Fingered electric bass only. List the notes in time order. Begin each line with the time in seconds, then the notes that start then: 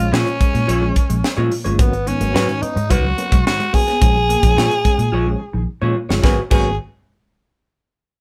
0.12 A#2
0.41 muted fingered electric bass stroke
0.55 A#2
0.68 A#1
1.10 A#1
1.38 A#2
1.66 G1
1.79 G#1
2.21 G#1
2.35 G#2
2.62 muted fingered electric bass stroke
2.76 G#2
2.90 C#2
3.32 B1
4.02 A#1
4.43 A#1
4.57 A#2
4.85 muted fingered electric bass stroke
4.98 A#2
5.12 A#1
5.54 A#1
5.82 A#2
6.10 G1
6.24 G#1
6.51 G#1